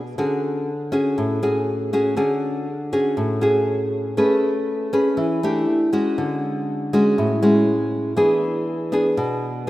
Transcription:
Already playing: B2
0.18 D3 C#4 F#4 G#4
0.92 C#4 F#4 G#4
1.18 A2
1.43 C#4 F#4 G#4
1.93 C#4 F#4 G#4
2.17 D3 C#4 F#4 G#4
2.93 C#4 F#4 G#4
3.17 A2
3.41 C#4 F#4 G#4
4.17 A3 C#4 G#4 B4
4.93 C#4 G#4 B4
5.17 E3
5.43 A3 D4 G4
5.93 G#3 C#4 F#4
6.18 D3
6.93 G#3 C#4 F#4
7.18 A2
7.42 G#3 C#4 F#4
8.16 E3 B3 D4 G#4
8.92 B3 D4 G#4
9.17 B2

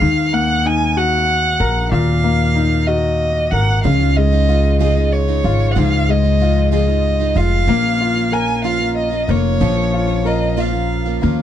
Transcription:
Already playing: F5
0.01 D#2 D#3
0.33 A#3 F#5
0.66 D#4 G#5
0.97 F#4 F#5
1.60 A#1 A#4
1.92 D#2 A#2 F5
2.24 A#3
2.56 D#4
2.87 F#4 D#5
3.51 G#1 A#4 F#5
3.84 C#2 C#3 F3 G#3 D#4 F4 F5
4.00 G#3 D#4 F4
4.16 G#3 D#5
4.32 G#3 D#4 F4
4.48 F3 G#3 D#4 F4
4.79 C#3 F3 G#3 D#4 F4 G#4 D#5
4.95 G#3 D#4 F4
5.12 C#5
5.28 G#3 D#4 F4
5.43 G#1 F3 G#3 D#4 F4
5.71 C#3 F#5
5.76 C#2 G#2 F3 G#3 D#4 F4 F5
5.92 G#3 D#4 F4
6.09 G#3 D#5
6.24 G#3 D#4 F4
6.40 F3 G#3 D#4 F4
6.72 C#3 F3 G#3 D#4 F4 G#4 D#5
6.88 G#3 D#4 F4
7.20 G#3 D#4 F4
7.35 F1 F3 G#3 D#4 F4 F5
7.67 A#1 A#2 F3 A#3 C#4 F4
7.83 A#3 C#4 F4
8.01 F4
8.16 A#3 C#4 F4
8.31 F3 A#3 C#4 F4 A#4 G#5
8.64 A#2 F3 A#3 C#4 F4 F5
8.79 A#3 C#4 F4
8.97 D#5
9.11 A#3 C#4 F4
9.27 F1 F3 A#3 C#4 F4 C#5
9.60 A#1 A#2 F3 A#3 C#4 F4
9.76 A#3 C#4 F4
9.93 F4
10.08 A#3 C#4 F4
10.24 F3 A#3 C#4 F4 A#4 D#5
10.56 A#2 F3 A#3 C#4 F4 F5
10.73 A#3 C#4 F4
11.06 A#3 C#4 F4
11.21 D#2 F3 A#3 C#4 F4

